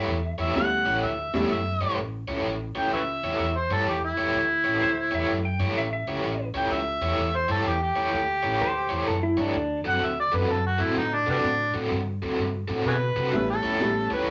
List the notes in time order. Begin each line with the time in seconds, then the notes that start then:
Already playing: A3 E4 G4 C#5 E5
0.07 E2
0.38 E2 A3 E4 G4 C#5 E5
0.55 D2 G3 A3 B3 C#4 E4 F#5
0.86 A1 A3 E4 G4 C#5
1.03 D2 E5
1.33 E2 G3 A3 B3 C#4 E4 G4 C#5
1.50 F#2 E5
1.80 G2 A3 E4 G4 C#5
1.97 A1
2.28 C#2 A3 E4 G4 C#5
2.45 A1
2.75 C#2 A3 E4 G4 C#5 G5
2.92 C#2 B4 C#5 E5
3.23 E2 A3 E4 G4 C#5
3.39 E2
3.58 C5
3.70 G2 A3 E4 G4 A4 C#5
3.87 E2 G4
4.05 E4
4.17 E2 A3 E4 G4 C#5
4.34 D2
4.64 A1 A3 E4 G4 C#5
4.82 D2 C5
5.11 E2 A3 E4 G4 C#5 E5
5.29 F#2
5.45 G5
5.59 G2 A3 E4 G4 C#5
5.76 A1 E5
5.93 E5
6.07 C#2 A3 E4 G4 C#5
6.24 A1
6.54 C#2 A3 E4 G4 C#5 G5
6.70 C#2 E5
7.01 E2 A3 E4 G4 C#5
7.18 E2
7.35 C5
7.48 G2 A3 E4 G4 A4 C#5
7.66 E2 G4
7.83 G4
7.96 E2 A3 E4 G4 C#5
8.13 D2
8.43 A1 A3 E4 G4 C#5
8.60 D2 C5
8.89 E2 A3 E4 G4 C#5
9.07 F#2 A4
9.23 E4
9.37 G2 A3 D4 E4 G4 C#5
9.55 D2
9.84 F#2 D3 C4 F#4 A4
9.89 F#5
10.02 D2 E5
10.20 D5
10.32 F#2 D3 C4 F#4 A4 B4
10.49 F#2 A4
10.67 F#4
10.78 A2 D3 C4 F#4 A4
10.83 E4
10.97 A2 D#4
11.14 D4
11.27 C3 D3 G3 B3 C4 D4 F#4 A4
11.44 A2
11.74 A2 D3 C4 F#4 A4
11.91 G2
12.22 D2 D3 C4 F#4 A4
12.39 G2
12.68 A2 D3 C4 F#4 A4
12.86 B2 F#4 G#4 B4
13.16 C3 D3 C4 F#4 A4
13.32 A1 G3 A3 B3 C#4 E4
13.50 A4
13.63 C#2 A3 E4 G4 C#5
13.80 A1 G3 A3 B3 C#4 E4
14.10 C#2 A3 E4 G4 B4 C#5
14.27 C#2